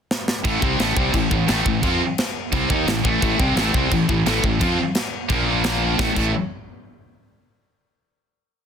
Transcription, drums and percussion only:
0.11 snare medium
0.28 snare loud
0.45 kick loud
0.45 china medium
0.62 kick loud
0.79 snare loud
0.79 china medium
0.97 kick loud
1.14 kick medium
1.14 china medium
1.31 kick medium
1.48 snare loud
1.48 china medium
1.66 kick medium
1.83 kick loud
1.83 china medium
2.18 snare loud
2.18 china medium
2.52 kick medium
2.52 china medium
2.70 kick loud
2.88 snare loud
2.88 china medium
3.05 kick loud
3.22 kick loud
3.22 china medium
3.40 kick loud
3.57 snare loud
3.57 china medium
3.74 kick loud
3.91 kick medium
3.91 china medium
4.09 kick medium
4.26 snare loud
4.26 china medium
4.44 kick medium
4.61 kick loud
4.61 china medium
4.95 snare loud
4.95 china medium
5.29 kick loud
5.29 china medium
5.64 snare loud
5.64 china medium
5.99 kick loud
5.99 snare loud
6.16 kick loud
6.16 crash loud

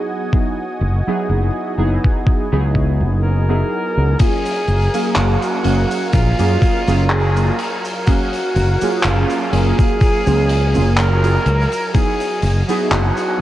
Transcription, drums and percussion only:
0.33 kick loud
2.04 kick medium
2.27 kick loud
2.75 kick medium
4.19 kick loud
4.19 closed hi-hat loud
4.19 cabasa medium
4.45 closed hi-hat medium
4.45 cabasa soft
4.68 closed hi-hat medium
4.94 closed hi-hat medium
4.94 cabasa medium
5.16 clap loud
5.16 closed hi-hat loud
5.16 cabasa medium
5.42 closed hi-hat medium
5.42 cabasa soft
5.64 closed hi-hat medium
5.91 closed hi-hat medium
5.91 cabasa medium
6.13 kick loud
6.13 closed hi-hat loud
6.13 cabasa medium
6.39 closed hi-hat medium
6.39 cabasa medium
6.62 kick loud
6.62 closed hi-hat medium
6.88 closed hi-hat medium
6.88 cabasa medium
7.10 clap loud
7.10 closed hi-hat medium
7.10 cabasa medium
7.37 closed hi-hat medium
7.37 cabasa medium
7.59 closed hi-hat medium
7.85 closed hi-hat medium
7.85 cabasa medium
8.07 kick loud
8.07 closed hi-hat loud
8.07 cabasa medium
8.33 closed hi-hat medium
8.33 cabasa soft
8.56 closed hi-hat medium
8.81 closed hi-hat medium
8.81 cabasa medium
9.03 clap loud
9.03 closed hi-hat loud
9.03 cabasa medium
9.30 closed hi-hat medium
9.30 cabasa soft
9.53 closed hi-hat medium
9.78 kick loud
9.78 closed hi-hat medium
9.78 cabasa medium
10.01 kick loud
10.01 closed hi-hat medium
10.01 cabasa medium
10.26 closed hi-hat medium
10.26 cabasa medium
10.49 closed hi-hat medium
10.74 closed hi-hat medium
10.74 cabasa medium
10.97 clap loud
10.97 closed hi-hat loud
10.97 cabasa medium
11.24 closed hi-hat medium
11.24 cabasa soft
11.46 closed hi-hat medium
11.72 closed hi-hat medium
11.72 cabasa medium
11.94 kick loud
11.94 closed hi-hat loud
11.94 cabasa medium
12.20 closed hi-hat medium
12.20 cabasa soft
12.42 closed hi-hat medium
12.69 closed hi-hat medium
12.69 cabasa medium
12.91 clap loud
12.91 closed hi-hat loud
12.91 cabasa medium
13.17 closed hi-hat medium
13.17 cabasa soft

